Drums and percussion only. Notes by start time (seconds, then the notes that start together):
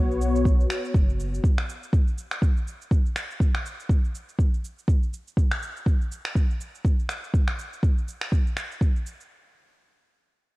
0.11 shaker
0.22 shaker
0.36 shaker
0.45 kick, shaker
0.60 shaker
0.70 finger snap, shaker
0.85 shaker
0.94 kick, shaker
1.09 shaker
1.20 shaker
1.34 shaker
1.44 kick, shaker
1.58 finger snap, shaker
1.69 shaker
1.83 shaker
1.93 kick, shaker
2.08 shaker
2.18 shaker
2.31 finger snap, shaker
2.42 kick, shaker
2.57 shaker
2.67 shaker
2.81 shaker
2.91 kick, shaker
3.06 shaker
3.16 finger snap, shaker
3.31 shaker
3.40 kick, shaker
3.55 finger snap, shaker
3.66 shaker
3.80 shaker
3.89 kick, shaker
4.04 shaker
4.15 shaker
4.29 shaker
4.39 kick, shaker
4.54 shaker
4.64 shaker
4.78 shaker
4.88 kick, shaker
5.03 shaker
5.13 shaker
5.28 shaker
5.37 kick, shaker
5.51 finger snap, shaker
5.63 shaker
5.77 shaker
5.86 kick, shaker
6.01 shaker
6.12 shaker
6.25 finger snap, shaker
6.35 kick, shaker
6.50 shaker
6.61 shaker
6.75 shaker
6.85 kick, shaker
6.99 shaker
7.09 finger snap, shaker
7.24 shaker
7.34 kick, shaker
7.48 finger snap, shaker
7.59 shaker
7.73 shaker
7.83 kick, shaker
7.98 shaker
8.08 shaker
8.22 finger snap, shaker
8.32 kick, shaker
8.47 shaker
8.57 finger snap, shaker
8.72 shaker
8.81 kick, shaker
8.96 shaker
9.07 shaker
9.21 shaker